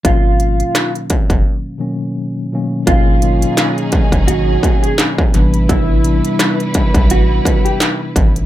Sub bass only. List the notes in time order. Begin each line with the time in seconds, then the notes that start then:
0.05 G#1
1.30 F#1
2.87 G#1
4.12 F#1
4.29 G#1
5.34 A1
6.95 B1
7.11 A1
8.16 A1